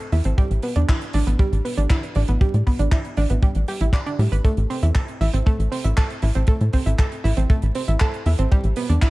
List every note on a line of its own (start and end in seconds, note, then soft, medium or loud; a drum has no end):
0.12 0.22 E2 loud
0.12 0.20 E4 medium
0.12 open hi-hat medium
0.24 0.34 A1 medium
0.24 0.30 C4 medium
0.24 closed hi-hat medium
0.38 0.42 G3 loud
0.38 kick loud
0.38 closed hi-hat medium
0.51 0.60 A1 medium
0.51 closed hi-hat soft
0.62 0.75 B3 medium
0.62 open hi-hat medium
0.76 0.85 E2 medium
0.76 0.87 D4 medium
0.76 closed hi-hat medium
0.89 0.93 E4 medium
0.89 kick loud
0.89 clap loud
0.89 closed hi-hat medium
1.01 closed hi-hat soft
1.13 1.23 A1 medium
1.13 1.19 D4 loud
1.13 open hi-hat loud
1.27 1.36 A1 medium
1.27 1.31 B3 medium
1.27 closed hi-hat medium
1.39 1.44 G3 loud
1.39 kick loud
1.39 closed hi-hat medium
1.52 1.61 A1 medium
1.52 closed hi-hat soft
1.65 1.69 B3 medium
1.65 open hi-hat loud
1.78 1.87 A1 medium
1.78 1.89 D4 medium
1.78 closed hi-hat medium
1.90 2.02 E4 loud
1.90 kick loud
1.90 clap loud
1.90 closed hi-hat medium
2.03 closed hi-hat soft
2.15 2.25 A1 medium
2.15 2.23 D4 medium
2.15 open hi-hat medium
2.28 2.38 A1 medium
2.28 2.33 B3 medium
2.28 closed hi-hat medium
2.41 2.46 G3 loud
2.41 kick loud
2.41 closed hi-hat medium
2.54 2.63 A2 medium
2.54 closed hi-hat soft
2.67 2.78 B3 medium
2.67 kick medium
2.67 open hi-hat loud
2.79 2.89 A1 medium
2.79 2.91 D4 medium
2.79 closed hi-hat medium
2.92 2.96 E4 medium
2.92 kick loud
2.92 clap loud
2.92 closed hi-hat medium
3.05 closed hi-hat soft
3.17 3.27 A1 medium
3.17 3.22 D4 loud
3.17 open hi-hat loud
3.30 3.39 A1 medium
3.30 3.35 B3 medium
3.30 closed hi-hat medium
3.42 3.47 G3 loud
3.42 kick loud
3.42 closed hi-hat medium
3.55 3.65 A1 medium
3.55 closed hi-hat soft
3.68 3.73 G4 loud
3.68 open hi-hat loud
3.81 3.90 A1 medium
3.81 3.89 E4 medium
3.81 closed hi-hat medium
3.93 4.01 D5 medium
3.93 kick loud
3.93 clap loud
3.93 closed hi-hat medium
4.06 4.14 D4 loud
4.06 closed hi-hat soft
4.19 4.28 A2 medium
4.19 4.31 G3 medium
4.19 open hi-hat medium
4.32 4.41 A1 medium
4.32 4.39 B4 medium
4.32 closed hi-hat medium
4.45 4.49 A3 loud
4.45 kick loud
4.45 closed hi-hat medium
4.57 4.67 A1 medium
4.57 closed hi-hat soft
4.70 4.81 C4 medium
4.70 open hi-hat loud
4.83 4.92 E2 medium
4.83 4.94 E4 medium
4.83 closed hi-hat medium
4.95 5.00 A4 medium
4.95 kick loud
4.95 clap loud
4.95 closed hi-hat medium
5.08 closed hi-hat soft
5.21 5.30 A1 loud
5.21 5.25 E4 loud
5.21 open hi-hat loud
5.34 5.43 A1 medium
5.34 5.38 C4 medium
5.34 closed hi-hat medium
5.46 5.51 A3 loud
5.46 kick loud
5.46 closed hi-hat medium
5.59 5.68 A1 medium
5.59 closed hi-hat soft
5.72 5.76 C4 medium
5.72 open hi-hat loud
5.84 5.94 A1 medium
5.84 5.96 E4 medium
5.84 closed hi-hat medium
5.97 6.08 A4 loud
5.97 kick loud
5.97 clap loud
5.97 closed hi-hat medium
6.10 closed hi-hat soft
6.22 6.32 A1 loud
6.22 6.30 E4 medium
6.22 open hi-hat loud
6.35 6.45 A1 medium
6.35 6.40 C4 medium
6.35 closed hi-hat medium
6.47 6.53 A3 loud
6.47 kick loud
6.47 closed hi-hat medium
6.61 6.70 A2 medium
6.61 closed hi-hat soft
6.73 6.85 C4 medium
6.73 kick medium
6.73 open hi-hat loud
6.86 6.95 A1 medium
6.86 6.97 E4 medium
6.86 closed hi-hat medium
6.99 7.03 A4 medium
6.99 kick loud
6.99 clap loud
6.99 closed hi-hat medium
7.12 closed hi-hat soft
7.24 7.34 A1 medium
7.24 7.29 E4 loud
7.24 open hi-hat loud
7.37 7.46 A1 medium
7.37 7.42 C4 medium
7.37 closed hi-hat medium
7.50 7.54 A3 loud
7.50 kick loud
7.50 closed hi-hat medium
7.62 7.72 A1 medium
7.62 closed hi-hat soft
7.75 7.80 C4 medium
7.75 open hi-hat loud
7.88 7.97 A1 medium
7.88 7.99 E4 medium
7.88 closed hi-hat medium
8.00 8.12 A4 loud
8.00 kick loud
8.00 clap loud
8.00 closed hi-hat medium
8.14 closed hi-hat soft
8.26 8.35 E2 loud
8.26 8.34 E4 medium
8.26 open hi-hat loud
8.39 8.48 A1 medium
8.39 8.43 C4 medium
8.39 closed hi-hat medium
8.51 8.56 G3 loud
8.51 kick loud
8.51 closed hi-hat medium
8.64 8.73 A1 medium
8.64 closed hi-hat soft
8.76 8.88 B3 medium
8.76 open hi-hat loud
8.90 8.99 E2 medium
8.90 9.01 D4 medium
8.90 closed hi-hat medium
9.02 9.07 E4 medium
9.02 kick loud
9.02 clap loud
9.02 closed hi-hat medium